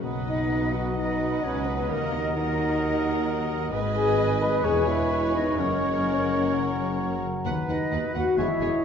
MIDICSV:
0, 0, Header, 1, 13, 480
1, 0, Start_track
1, 0, Key_signature, 5, "major"
1, 0, Tempo, 461184
1, 36, Time_signature, 4, 2, 24, 8
1, 5315, Tempo, 466926
1, 9159, End_track
2, 0, Start_track
2, 0, Title_t, "Violin section"
2, 0, Program_c, 0, 48
2, 39, Note_on_c, 0, 78, 49
2, 967, Note_off_c, 0, 78, 0
2, 1019, Note_on_c, 0, 78, 52
2, 1961, Note_off_c, 0, 78, 0
2, 1984, Note_on_c, 0, 78, 58
2, 2446, Note_off_c, 0, 78, 0
2, 2459, Note_on_c, 0, 78, 64
2, 3851, Note_off_c, 0, 78, 0
2, 3874, Note_on_c, 0, 80, 63
2, 4789, Note_off_c, 0, 80, 0
2, 4826, Note_on_c, 0, 80, 65
2, 5773, Note_off_c, 0, 80, 0
2, 5802, Note_on_c, 0, 78, 59
2, 7519, Note_off_c, 0, 78, 0
2, 7726, Note_on_c, 0, 78, 55
2, 7809, Note_off_c, 0, 78, 0
2, 7972, Note_on_c, 0, 78, 51
2, 8054, Note_off_c, 0, 78, 0
2, 8213, Note_on_c, 0, 78, 53
2, 8296, Note_off_c, 0, 78, 0
2, 8457, Note_on_c, 0, 78, 54
2, 8539, Note_off_c, 0, 78, 0
2, 8681, Note_on_c, 0, 80, 56
2, 8763, Note_off_c, 0, 80, 0
2, 8910, Note_on_c, 0, 80, 54
2, 8992, Note_off_c, 0, 80, 0
2, 9159, End_track
3, 0, Start_track
3, 0, Title_t, "Flute"
3, 0, Program_c, 1, 73
3, 277, Note_on_c, 1, 75, 59
3, 755, Note_on_c, 1, 78, 55
3, 770, Note_off_c, 1, 75, 0
3, 1002, Note_off_c, 1, 78, 0
3, 1011, Note_on_c, 1, 75, 64
3, 1495, Note_on_c, 1, 73, 66
3, 1511, Note_off_c, 1, 75, 0
3, 1727, Note_off_c, 1, 73, 0
3, 1733, Note_on_c, 1, 71, 60
3, 1982, Note_on_c, 1, 70, 69
3, 1998, Note_off_c, 1, 71, 0
3, 2207, Note_on_c, 1, 75, 70
3, 2223, Note_off_c, 1, 70, 0
3, 2450, Note_off_c, 1, 75, 0
3, 2456, Note_on_c, 1, 75, 75
3, 3618, Note_off_c, 1, 75, 0
3, 4119, Note_on_c, 1, 80, 86
3, 4604, Note_on_c, 1, 83, 74
3, 4620, Note_off_c, 1, 80, 0
3, 4838, Note_on_c, 1, 80, 80
3, 4853, Note_off_c, 1, 83, 0
3, 5082, Note_on_c, 1, 76, 74
3, 5098, Note_off_c, 1, 80, 0
3, 5559, Note_off_c, 1, 76, 0
3, 5569, Note_on_c, 1, 75, 66
3, 5803, Note_on_c, 1, 73, 75
3, 5819, Note_off_c, 1, 75, 0
3, 7489, Note_off_c, 1, 73, 0
3, 7968, Note_on_c, 1, 75, 73
3, 8415, Note_off_c, 1, 75, 0
3, 8443, Note_on_c, 1, 78, 72
3, 8681, Note_on_c, 1, 76, 78
3, 8696, Note_off_c, 1, 78, 0
3, 9159, Note_off_c, 1, 76, 0
3, 9159, End_track
4, 0, Start_track
4, 0, Title_t, "Violin section"
4, 0, Program_c, 2, 48
4, 30, Note_on_c, 2, 75, 50
4, 963, Note_off_c, 2, 75, 0
4, 1000, Note_on_c, 2, 75, 46
4, 1952, Note_off_c, 2, 75, 0
4, 1973, Note_on_c, 2, 75, 60
4, 2444, Note_off_c, 2, 75, 0
4, 2469, Note_on_c, 2, 75, 61
4, 3856, Note_off_c, 2, 75, 0
4, 3872, Note_on_c, 2, 75, 72
4, 4787, Note_off_c, 2, 75, 0
4, 4827, Note_on_c, 2, 73, 61
4, 5789, Note_off_c, 2, 73, 0
4, 5801, Note_on_c, 2, 73, 67
4, 7485, Note_off_c, 2, 73, 0
4, 7730, Note_on_c, 2, 78, 66
4, 7812, Note_off_c, 2, 78, 0
4, 7971, Note_on_c, 2, 78, 48
4, 8053, Note_off_c, 2, 78, 0
4, 8200, Note_on_c, 2, 78, 50
4, 8283, Note_off_c, 2, 78, 0
4, 8441, Note_on_c, 2, 78, 51
4, 8523, Note_off_c, 2, 78, 0
4, 8692, Note_on_c, 2, 73, 52
4, 8774, Note_off_c, 2, 73, 0
4, 8919, Note_on_c, 2, 73, 54
4, 9001, Note_off_c, 2, 73, 0
4, 9159, End_track
5, 0, Start_track
5, 0, Title_t, "Oboe"
5, 0, Program_c, 3, 68
5, 40, Note_on_c, 3, 75, 54
5, 3838, Note_off_c, 3, 75, 0
5, 3877, Note_on_c, 3, 75, 72
5, 4833, Note_on_c, 3, 73, 70
5, 4848, Note_off_c, 3, 75, 0
5, 7485, Note_off_c, 3, 73, 0
5, 7729, Note_on_c, 3, 71, 64
5, 8645, Note_off_c, 3, 71, 0
5, 8684, Note_on_c, 3, 73, 68
5, 9159, Note_off_c, 3, 73, 0
5, 9159, End_track
6, 0, Start_track
6, 0, Title_t, "Viola section"
6, 0, Program_c, 4, 48
6, 32, Note_on_c, 4, 71, 48
6, 964, Note_off_c, 4, 71, 0
6, 1011, Note_on_c, 4, 71, 55
6, 1957, Note_off_c, 4, 71, 0
6, 1989, Note_on_c, 4, 70, 55
6, 2448, Note_off_c, 4, 70, 0
6, 2460, Note_on_c, 4, 70, 67
6, 3852, Note_off_c, 4, 70, 0
6, 3877, Note_on_c, 4, 71, 69
6, 4790, Note_off_c, 4, 71, 0
6, 4836, Note_on_c, 4, 71, 59
6, 5778, Note_off_c, 4, 71, 0
6, 5804, Note_on_c, 4, 70, 60
6, 7521, Note_off_c, 4, 70, 0
6, 7731, Note_on_c, 4, 71, 55
6, 7814, Note_off_c, 4, 71, 0
6, 7969, Note_on_c, 4, 71, 46
6, 8051, Note_off_c, 4, 71, 0
6, 8218, Note_on_c, 4, 71, 54
6, 8301, Note_off_c, 4, 71, 0
6, 8459, Note_on_c, 4, 71, 46
6, 8541, Note_off_c, 4, 71, 0
6, 8694, Note_on_c, 4, 68, 54
6, 8777, Note_off_c, 4, 68, 0
6, 8916, Note_on_c, 4, 68, 58
6, 8998, Note_off_c, 4, 68, 0
6, 9159, End_track
7, 0, Start_track
7, 0, Title_t, "Clarinet"
7, 0, Program_c, 5, 71
7, 31, Note_on_c, 5, 71, 48
7, 1983, Note_on_c, 5, 70, 64
7, 1999, Note_off_c, 5, 71, 0
7, 3882, Note_off_c, 5, 70, 0
7, 3892, Note_on_c, 5, 71, 70
7, 5764, Note_off_c, 5, 71, 0
7, 5799, Note_on_c, 5, 70, 63
7, 7453, Note_off_c, 5, 70, 0
7, 7728, Note_on_c, 5, 71, 62
7, 8644, Note_off_c, 5, 71, 0
7, 8685, Note_on_c, 5, 68, 67
7, 9159, Note_off_c, 5, 68, 0
7, 9159, End_track
8, 0, Start_track
8, 0, Title_t, "French horn section"
8, 0, Program_c, 6, 60
8, 290, Note_on_c, 6, 63, 68
8, 736, Note_off_c, 6, 63, 0
8, 762, Note_on_c, 6, 66, 77
8, 1001, Note_off_c, 6, 66, 0
8, 1005, Note_on_c, 6, 63, 66
8, 1481, Note_off_c, 6, 63, 0
8, 1485, Note_on_c, 6, 61, 77
8, 1728, Note_on_c, 6, 59, 73
8, 1730, Note_off_c, 6, 61, 0
8, 1972, Note_off_c, 6, 59, 0
8, 1976, Note_on_c, 6, 58, 79
8, 2215, Note_on_c, 6, 63, 86
8, 2216, Note_off_c, 6, 58, 0
8, 2440, Note_off_c, 6, 63, 0
8, 2453, Note_on_c, 6, 63, 83
8, 3616, Note_off_c, 6, 63, 0
8, 4115, Note_on_c, 6, 68, 93
8, 4560, Note_off_c, 6, 68, 0
8, 4587, Note_on_c, 6, 71, 95
8, 4826, Note_on_c, 6, 68, 92
8, 4829, Note_off_c, 6, 71, 0
8, 5063, Note_off_c, 6, 68, 0
8, 5069, Note_on_c, 6, 64, 87
8, 5552, Note_off_c, 6, 64, 0
8, 5562, Note_on_c, 6, 63, 78
8, 5794, Note_off_c, 6, 63, 0
8, 5808, Note_on_c, 6, 61, 85
8, 7492, Note_off_c, 6, 61, 0
8, 7974, Note_on_c, 6, 63, 80
8, 8418, Note_off_c, 6, 63, 0
8, 8448, Note_on_c, 6, 66, 91
8, 8684, Note_off_c, 6, 66, 0
8, 8685, Note_on_c, 6, 64, 89
8, 9154, Note_off_c, 6, 64, 0
8, 9159, End_track
9, 0, Start_track
9, 0, Title_t, "Harp"
9, 0, Program_c, 7, 46
9, 0, Note_on_c, 7, 54, 54
9, 0, Note_on_c, 7, 66, 51
9, 0, Note_on_c, 7, 78, 58
9, 24, Note_on_c, 7, 47, 49
9, 273, Note_on_c, 7, 59, 38
9, 502, Note_off_c, 7, 66, 0
9, 515, Note_on_c, 7, 66, 45
9, 749, Note_off_c, 7, 59, 0
9, 761, Note_on_c, 7, 59, 41
9, 989, Note_off_c, 7, 54, 0
9, 1001, Note_on_c, 7, 54, 37
9, 1239, Note_off_c, 7, 59, 0
9, 1252, Note_on_c, 7, 59, 41
9, 1479, Note_off_c, 7, 66, 0
9, 1721, Note_off_c, 7, 59, 0
9, 1733, Note_on_c, 7, 59, 47
9, 1975, Note_on_c, 7, 51, 56
9, 1988, Note_off_c, 7, 47, 0
9, 1994, Note_off_c, 7, 59, 0
9, 2215, Note_on_c, 7, 63, 45
9, 2455, Note_on_c, 7, 70, 59
9, 2678, Note_off_c, 7, 63, 0
9, 2690, Note_on_c, 7, 63, 47
9, 2934, Note_on_c, 7, 58, 48
9, 3158, Note_off_c, 7, 63, 0
9, 3171, Note_on_c, 7, 63, 50
9, 3397, Note_off_c, 7, 70, 0
9, 3410, Note_on_c, 7, 70, 55
9, 3627, Note_off_c, 7, 63, 0
9, 3640, Note_on_c, 7, 63, 55
9, 3873, Note_on_c, 7, 44, 64
9, 3890, Note_off_c, 7, 78, 0
9, 3893, Note_off_c, 7, 54, 0
9, 3896, Note_off_c, 7, 51, 0
9, 3898, Note_off_c, 7, 58, 0
9, 3899, Note_off_c, 7, 70, 0
9, 4117, Note_on_c, 7, 56, 51
9, 4358, Note_on_c, 7, 71, 62
9, 4583, Note_off_c, 7, 56, 0
9, 4595, Note_on_c, 7, 56, 54
9, 4830, Note_on_c, 7, 40, 64
9, 4849, Note_off_c, 7, 44, 0
9, 4851, Note_off_c, 7, 63, 0
9, 5062, Note_off_c, 7, 56, 0
9, 5074, Note_on_c, 7, 56, 50
9, 5300, Note_off_c, 7, 71, 0
9, 5541, Note_off_c, 7, 56, 0
9, 5553, Note_on_c, 7, 56, 54
9, 5791, Note_on_c, 7, 42, 58
9, 5813, Note_off_c, 7, 40, 0
9, 5814, Note_off_c, 7, 56, 0
9, 6036, Note_on_c, 7, 54, 47
9, 6279, Note_on_c, 7, 70, 57
9, 6504, Note_off_c, 7, 54, 0
9, 6516, Note_on_c, 7, 54, 44
9, 6760, Note_on_c, 7, 49, 45
9, 6990, Note_off_c, 7, 54, 0
9, 7002, Note_on_c, 7, 54, 45
9, 7227, Note_off_c, 7, 70, 0
9, 7240, Note_on_c, 7, 70, 44
9, 7472, Note_off_c, 7, 54, 0
9, 7484, Note_on_c, 7, 54, 46
9, 7721, Note_on_c, 7, 51, 65
9, 7745, Note_off_c, 7, 42, 0
9, 7746, Note_off_c, 7, 70, 0
9, 7747, Note_off_c, 7, 49, 0
9, 7966, Note_on_c, 7, 59, 47
9, 8208, Note_on_c, 7, 66, 56
9, 8436, Note_off_c, 7, 59, 0
9, 8449, Note_on_c, 7, 59, 50
9, 8687, Note_on_c, 7, 52, 53
9, 8701, Note_off_c, 7, 51, 0
9, 8703, Note_off_c, 7, 54, 0
9, 8703, Note_off_c, 7, 66, 0
9, 8704, Note_off_c, 7, 59, 0
9, 8921, Note_on_c, 7, 61, 48
9, 9159, Note_off_c, 7, 52, 0
9, 9159, Note_off_c, 7, 61, 0
9, 9159, End_track
10, 0, Start_track
10, 0, Title_t, "Bassoon"
10, 0, Program_c, 8, 70
10, 37, Note_on_c, 8, 54, 52
10, 3836, Note_off_c, 8, 54, 0
10, 3876, Note_on_c, 8, 56, 78
10, 6772, Note_on_c, 8, 54, 60
10, 6788, Note_off_c, 8, 56, 0
10, 8402, Note_off_c, 8, 54, 0
10, 8682, Note_on_c, 8, 56, 65
10, 9159, Note_off_c, 8, 56, 0
10, 9159, End_track
11, 0, Start_track
11, 0, Title_t, "Cello section"
11, 0, Program_c, 10, 48
11, 34, Note_on_c, 10, 47, 57
11, 1450, Note_off_c, 10, 47, 0
11, 1491, Note_on_c, 10, 49, 56
11, 1965, Note_off_c, 10, 49, 0
11, 1982, Note_on_c, 10, 51, 65
11, 3873, Note_on_c, 10, 44, 78
11, 3881, Note_off_c, 10, 51, 0
11, 4788, Note_off_c, 10, 44, 0
11, 4829, Note_on_c, 10, 40, 68
11, 5793, Note_off_c, 10, 40, 0
11, 5801, Note_on_c, 10, 42, 70
11, 7484, Note_off_c, 10, 42, 0
11, 7730, Note_on_c, 10, 39, 72
11, 7813, Note_off_c, 10, 39, 0
11, 7964, Note_on_c, 10, 39, 54
11, 8046, Note_off_c, 10, 39, 0
11, 8200, Note_on_c, 10, 39, 59
11, 8282, Note_off_c, 10, 39, 0
11, 8437, Note_on_c, 10, 39, 61
11, 8519, Note_off_c, 10, 39, 0
11, 8671, Note_on_c, 10, 40, 65
11, 8753, Note_off_c, 10, 40, 0
11, 8903, Note_on_c, 10, 40, 57
11, 8985, Note_off_c, 10, 40, 0
11, 9159, End_track
12, 0, Start_track
12, 0, Title_t, "Double bass section"
12, 0, Program_c, 11, 48
12, 37, Note_on_c, 11, 35, 54
12, 1451, Note_off_c, 11, 35, 0
12, 1489, Note_on_c, 11, 37, 59
12, 1964, Note_off_c, 11, 37, 0
12, 1982, Note_on_c, 11, 39, 65
12, 3872, Note_on_c, 11, 32, 69
12, 3881, Note_off_c, 11, 39, 0
12, 4788, Note_off_c, 11, 32, 0
12, 4830, Note_on_c, 11, 28, 68
12, 5794, Note_off_c, 11, 28, 0
12, 5798, Note_on_c, 11, 30, 62
12, 7483, Note_off_c, 11, 30, 0
12, 7725, Note_on_c, 11, 39, 65
12, 7807, Note_off_c, 11, 39, 0
12, 7963, Note_on_c, 11, 39, 59
12, 8045, Note_off_c, 11, 39, 0
12, 8214, Note_on_c, 11, 39, 71
12, 8296, Note_off_c, 11, 39, 0
12, 8446, Note_on_c, 11, 39, 62
12, 8528, Note_off_c, 11, 39, 0
12, 8675, Note_on_c, 11, 28, 61
12, 8758, Note_off_c, 11, 28, 0
12, 8914, Note_on_c, 11, 28, 66
12, 8996, Note_off_c, 11, 28, 0
12, 9159, End_track
13, 0, Start_track
13, 0, Title_t, "Tuba"
13, 0, Program_c, 12, 58
13, 38, Note_on_c, 12, 35, 49
13, 1452, Note_off_c, 12, 35, 0
13, 1497, Note_on_c, 12, 37, 55
13, 1976, Note_on_c, 12, 39, 69
13, 1991, Note_off_c, 12, 37, 0
13, 3872, Note_off_c, 12, 39, 0
13, 3878, Note_on_c, 12, 32, 70
13, 4828, Note_on_c, 12, 28, 66
13, 4843, Note_off_c, 12, 32, 0
13, 5786, Note_off_c, 12, 28, 0
13, 5792, Note_on_c, 12, 30, 60
13, 7480, Note_off_c, 12, 30, 0
13, 7725, Note_on_c, 12, 39, 58
13, 7822, Note_off_c, 12, 39, 0
13, 7961, Note_on_c, 12, 39, 58
13, 8059, Note_off_c, 12, 39, 0
13, 8204, Note_on_c, 12, 39, 63
13, 8301, Note_off_c, 12, 39, 0
13, 8442, Note_on_c, 12, 39, 63
13, 8538, Note_off_c, 12, 39, 0
13, 8688, Note_on_c, 12, 28, 63
13, 8781, Note_off_c, 12, 28, 0
13, 8913, Note_on_c, 12, 28, 60
13, 9008, Note_off_c, 12, 28, 0
13, 9159, End_track
0, 0, End_of_file